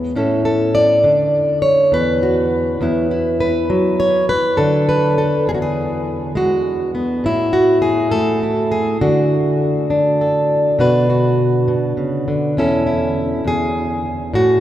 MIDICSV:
0, 0, Header, 1, 2, 480
1, 0, Start_track
1, 0, Key_signature, 3, "major"
1, 0, Tempo, 591133
1, 127, Time_signature, 6, 3, 24, 8
1, 11856, End_track
2, 0, Start_track
2, 0, Title_t, "Steel-string acoustic guitar"
2, 0, Program_c, 0, 25
2, 0, Note_on_c, 0, 40, 76
2, 0, Note_on_c, 0, 56, 56
2, 0, Note_on_c, 0, 59, 43
2, 97, Note_off_c, 0, 56, 0
2, 126, Note_on_c, 0, 45, 74
2, 127, Note_off_c, 0, 40, 0
2, 129, Note_off_c, 0, 59, 0
2, 132, Note_on_c, 0, 61, 50
2, 138, Note_on_c, 0, 64, 45
2, 146, Note_on_c, 0, 69, 49
2, 357, Note_off_c, 0, 69, 0
2, 367, Note_on_c, 0, 69, 92
2, 606, Note_on_c, 0, 74, 112
2, 819, Note_off_c, 0, 61, 0
2, 843, Note_on_c, 0, 50, 69
2, 844, Note_off_c, 0, 45, 0
2, 845, Note_off_c, 0, 69, 0
2, 867, Note_off_c, 0, 64, 0
2, 1312, Note_off_c, 0, 74, 0
2, 1316, Note_on_c, 0, 73, 94
2, 1559, Note_off_c, 0, 73, 0
2, 1559, Note_on_c, 0, 40, 74
2, 1562, Note_off_c, 0, 50, 0
2, 1573, Note_on_c, 0, 71, 104
2, 1808, Note_on_c, 0, 66, 48
2, 2256, Note_off_c, 0, 66, 0
2, 2269, Note_off_c, 0, 40, 0
2, 2279, Note_on_c, 0, 40, 72
2, 2287, Note_on_c, 0, 59, 50
2, 2294, Note_on_c, 0, 64, 47
2, 2517, Note_off_c, 0, 64, 0
2, 2527, Note_on_c, 0, 64, 48
2, 2755, Note_off_c, 0, 71, 0
2, 2764, Note_on_c, 0, 71, 91
2, 2974, Note_off_c, 0, 59, 0
2, 2975, Note_off_c, 0, 64, 0
2, 2999, Note_off_c, 0, 40, 0
2, 3002, Note_on_c, 0, 54, 72
2, 3245, Note_on_c, 0, 73, 100
2, 3475, Note_off_c, 0, 71, 0
2, 3482, Note_off_c, 0, 73, 0
2, 3485, Note_on_c, 0, 71, 101
2, 3692, Note_off_c, 0, 54, 0
2, 3713, Note_on_c, 0, 69, 88
2, 3722, Note_off_c, 0, 71, 0
2, 3723, Note_on_c, 0, 50, 72
2, 3968, Note_on_c, 0, 71, 96
2, 4196, Note_off_c, 0, 69, 0
2, 4207, Note_on_c, 0, 69, 87
2, 4441, Note_off_c, 0, 50, 0
2, 4441, Note_on_c, 0, 40, 73
2, 4443, Note_off_c, 0, 69, 0
2, 4444, Note_off_c, 0, 71, 0
2, 4456, Note_on_c, 0, 68, 80
2, 4499, Note_off_c, 0, 68, 0
2, 4503, Note_on_c, 0, 66, 67
2, 4557, Note_off_c, 0, 66, 0
2, 4564, Note_on_c, 0, 68, 83
2, 5159, Note_on_c, 0, 56, 62
2, 5164, Note_off_c, 0, 68, 0
2, 5172, Note_on_c, 0, 66, 83
2, 5637, Note_off_c, 0, 66, 0
2, 5641, Note_on_c, 0, 59, 45
2, 5850, Note_off_c, 0, 56, 0
2, 5879, Note_on_c, 0, 45, 74
2, 5880, Note_off_c, 0, 40, 0
2, 5880, Note_off_c, 0, 59, 0
2, 5894, Note_on_c, 0, 64, 93
2, 6114, Note_on_c, 0, 66, 86
2, 6345, Note_off_c, 0, 66, 0
2, 6348, Note_on_c, 0, 68, 94
2, 6586, Note_off_c, 0, 64, 0
2, 6589, Note_on_c, 0, 69, 107
2, 6597, Note_on_c, 0, 57, 64
2, 6834, Note_off_c, 0, 68, 0
2, 6845, Note_on_c, 0, 64, 42
2, 7074, Note_off_c, 0, 64, 0
2, 7077, Note_on_c, 0, 68, 96
2, 7290, Note_off_c, 0, 57, 0
2, 7315, Note_off_c, 0, 69, 0
2, 7316, Note_off_c, 0, 68, 0
2, 7319, Note_on_c, 0, 50, 72
2, 7319, Note_on_c, 0, 66, 91
2, 7320, Note_off_c, 0, 45, 0
2, 8041, Note_on_c, 0, 62, 62
2, 8292, Note_on_c, 0, 69, 45
2, 8732, Note_off_c, 0, 62, 0
2, 8738, Note_off_c, 0, 69, 0
2, 8758, Note_on_c, 0, 47, 74
2, 8760, Note_off_c, 0, 66, 0
2, 8768, Note_on_c, 0, 62, 62
2, 8771, Note_on_c, 0, 66, 64
2, 8777, Note_on_c, 0, 71, 73
2, 9001, Note_off_c, 0, 66, 0
2, 9010, Note_on_c, 0, 66, 56
2, 9473, Note_off_c, 0, 47, 0
2, 9482, Note_on_c, 0, 47, 61
2, 9718, Note_off_c, 0, 47, 0
2, 9721, Note_on_c, 0, 49, 57
2, 9962, Note_off_c, 0, 49, 0
2, 9962, Note_off_c, 0, 50, 0
2, 9970, Note_on_c, 0, 50, 59
2, 10177, Note_off_c, 0, 62, 0
2, 10178, Note_off_c, 0, 66, 0
2, 10181, Note_off_c, 0, 71, 0
2, 10206, Note_off_c, 0, 50, 0
2, 10208, Note_on_c, 0, 40, 73
2, 10217, Note_on_c, 0, 61, 63
2, 10220, Note_on_c, 0, 64, 56
2, 10226, Note_on_c, 0, 69, 66
2, 10444, Note_off_c, 0, 64, 0
2, 10448, Note_on_c, 0, 64, 54
2, 10901, Note_off_c, 0, 61, 0
2, 10906, Note_off_c, 0, 69, 0
2, 10908, Note_off_c, 0, 40, 0
2, 10917, Note_on_c, 0, 40, 66
2, 10939, Note_off_c, 0, 64, 0
2, 10942, Note_on_c, 0, 68, 90
2, 11640, Note_off_c, 0, 40, 0
2, 11640, Note_on_c, 0, 45, 74
2, 11651, Note_off_c, 0, 68, 0
2, 11654, Note_on_c, 0, 66, 90
2, 11856, Note_off_c, 0, 45, 0
2, 11856, Note_off_c, 0, 66, 0
2, 11856, End_track
0, 0, End_of_file